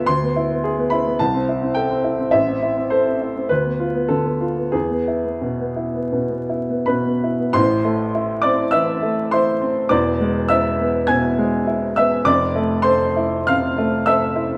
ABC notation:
X:1
M:4/4
L:1/16
Q:1/4=102
K:Am
V:1 name="Upright piano"
c'6 b2 a4 g4 | e4 c4 B4 A4 | ^G12 [Bb]4 | [cc']6 [dd']2 [ee']4 [cc']4 |
[dd']4 [ee']4 [^g^g']4 z2 [ee']2 | [dd']4 [cc']4 [ff']4 [ee']4 |]
V:2 name="Upright piano"
D,, B, E B, ^G B, E B, C,, C E C A C E C | A,,, C E C A C E C D,, B, F B, D, B, F B, | E,, B, E B, B,, B, E B, B,, B, E B, B,, B, E B, | [A,,,A,,]2 A,2 E2 C2 E,2 A,2 E2 C2 |
[E,,,E,,]2 ^G,2 E2 B,2 B,,2 G,2 E2 B,2 | [F,,,F,,]2 A,2 A2 E2 C,2 A,2 A2 E2 |]